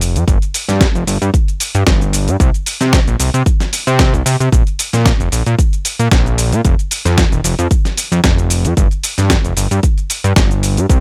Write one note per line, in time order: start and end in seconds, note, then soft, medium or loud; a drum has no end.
0.00 0.17 F1 loud
0.00 open hi-hat loud
0.00 shaker medium
0.16 0.24 F2 loud
0.16 closed hi-hat medium
0.16 shaker soft
0.28 0.38 G1 loud
0.28 kick loud
0.28 closed hi-hat medium
0.28 shaker soft
0.42 closed hi-hat soft
0.42 shaker soft
0.54 open hi-hat loud
0.54 shaker medium
0.69 0.87 G2 medium
0.69 snare soft
0.69 closed hi-hat medium
0.69 shaker soft
0.81 kick loud
0.81 snare loud
0.81 closed hi-hat medium
0.81 shaker soft
0.95 1.04 F1 medium
0.95 closed hi-hat soft
0.95 shaker soft
1.07 1.18 G1 medium
1.07 open hi-hat loud
1.07 shaker medium
1.22 1.31 G2 medium
1.22 closed hi-hat medium
1.22 shaker soft
1.34 kick loud
1.34 closed hi-hat soft
1.34 shaker soft
1.48 closed hi-hat soft
1.48 shaker soft
1.60 open hi-hat loud
1.60 shaker medium
1.75 1.84 G2 loud
1.75 closed hi-hat soft
1.75 shaker soft
1.87 2.29 G1 loud
1.87 kick loud
1.87 snare loud
1.87 closed hi-hat medium
1.87 shaker soft
2.01 closed hi-hat soft
2.01 shaker soft
2.13 open hi-hat loud
2.13 shaker medium
2.28 2.37 G2 loud
2.28 closed hi-hat medium
2.28 shaker soft
2.40 2.51 C2 loud
2.40 kick loud
2.40 closed hi-hat medium
2.40 shaker soft
2.54 closed hi-hat soft
2.54 shaker soft
2.66 open hi-hat loud
2.66 shaker medium
2.81 3.00 C3 medium
2.81 snare soft
2.81 closed hi-hat medium
2.81 shaker soft
2.93 kick loud
2.93 snare loud
2.93 closed hi-hat medium
2.93 shaker soft
3.08 3.16 A#1 medium
3.08 closed hi-hat soft
3.08 shaker soft
3.20 3.30 C2 medium
3.20 open hi-hat loud
3.20 shaker medium
3.34 3.43 C3 medium
3.34 closed hi-hat soft
3.34 shaker soft
3.46 kick loud
3.46 closed hi-hat soft
3.46 shaker soft
3.60 snare soft
3.60 closed hi-hat soft
3.60 shaker soft
3.73 open hi-hat loud
3.73 shaker medium
3.87 4.15 C3 loud
3.87 closed hi-hat soft
3.87 shaker soft
3.99 kick loud
3.99 snare loud
3.99 closed hi-hat medium
3.99 shaker soft
4.14 4.23 C2 medium
4.14 closed hi-hat soft
4.14 shaker soft
4.26 4.36 C3 loud
4.26 open hi-hat loud
4.26 shaker medium
4.40 4.49 C3 medium
4.40 closed hi-hat soft
4.40 shaker soft
4.52 4.63 A#1 loud
4.52 kick loud
4.52 closed hi-hat medium
4.52 shaker soft
4.67 closed hi-hat soft
4.67 shaker soft
4.79 open hi-hat loud
4.79 shaker medium
4.93 5.12 A#2 medium
4.93 snare soft
4.93 closed hi-hat medium
4.93 shaker soft
5.06 kick loud
5.06 snare loud
5.06 closed hi-hat medium
5.06 shaker soft
5.20 5.29 F1 medium
5.20 closed hi-hat soft
5.20 shaker soft
5.32 5.43 A#1 medium
5.32 open hi-hat loud
5.32 shaker medium
5.46 5.55 A#2 medium
5.46 closed hi-hat medium
5.46 shaker soft
5.59 kick loud
5.59 closed hi-hat medium
5.59 shaker soft
5.73 closed hi-hat soft
5.73 shaker soft
5.85 open hi-hat loud
5.85 shaker medium
5.99 6.08 A#2 loud
5.99 closed hi-hat medium
5.99 shaker soft
6.11 6.54 A#1 medium
6.11 kick loud
6.11 snare loud
6.11 closed hi-hat medium
6.11 shaker soft
6.26 closed hi-hat soft
6.26 shaker soft
6.38 open hi-hat loud
6.38 shaker medium
6.52 6.61 A#2 loud
6.52 closed hi-hat medium
6.52 shaker soft
6.65 6.75 F1 loud
6.65 kick loud
6.65 closed hi-hat medium
6.65 shaker soft
6.79 closed hi-hat soft
6.79 shaker soft
6.91 open hi-hat loud
6.91 shaker medium
7.05 7.24 F2 medium
7.05 snare soft
7.05 closed hi-hat medium
7.05 shaker soft
7.18 kick loud
7.18 snare loud
7.18 closed hi-hat medium
7.18 shaker soft
7.32 7.41 D#1 medium
7.32 closed hi-hat soft
7.32 shaker soft
7.44 7.55 F1 medium
7.44 open hi-hat loud
7.44 shaker medium
7.59 7.68 F2 medium
7.59 closed hi-hat medium
7.59 shaker soft
7.71 kick loud
7.71 closed hi-hat medium
7.71 shaker soft
7.85 snare soft
7.85 closed hi-hat soft
7.85 shaker soft
7.97 open hi-hat loud
7.97 shaker medium
8.12 8.21 F2 loud
8.12 closed hi-hat medium
8.12 shaker soft
8.24 8.67 F1 loud
8.24 kick loud
8.24 snare loud
8.24 closed hi-hat medium
8.24 shaker soft
8.38 closed hi-hat soft
8.38 shaker soft
8.50 open hi-hat loud
8.50 shaker medium
8.65 8.74 F2 loud
8.65 closed hi-hat medium
8.65 shaker soft
8.77 8.88 G1 loud
8.77 kick loud
8.77 closed hi-hat medium
8.77 shaker soft
8.91 closed hi-hat soft
8.91 shaker soft
9.04 open hi-hat loud
9.04 shaker medium
9.18 9.37 G2 medium
9.18 snare soft
9.18 closed hi-hat medium
9.18 shaker soft
9.30 kick loud
9.30 snare loud
9.30 closed hi-hat medium
9.30 shaker soft
9.45 9.54 F1 medium
9.45 closed hi-hat soft
9.45 shaker soft
9.57 9.67 G1 medium
9.57 open hi-hat loud
9.57 shaker medium
9.71 9.80 G2 medium
9.71 closed hi-hat medium
9.71 shaker soft
9.83 kick loud
9.83 closed hi-hat medium
9.83 shaker soft
9.98 closed hi-hat soft
9.98 shaker soft
10.10 open hi-hat loud
10.10 shaker medium
10.24 10.33 G2 loud
10.24 closed hi-hat medium
10.24 shaker soft
10.36 10.79 G1 loud
10.36 kick loud
10.36 snare loud
10.36 closed hi-hat medium
10.36 shaker soft
10.51 closed hi-hat soft
10.51 shaker soft
10.63 open hi-hat loud
10.63 shaker medium
10.77 10.86 G2 loud
10.77 closed hi-hat medium
10.77 shaker soft
10.90 11.00 C2 loud
10.90 kick loud
10.90 closed hi-hat medium
10.90 shaker soft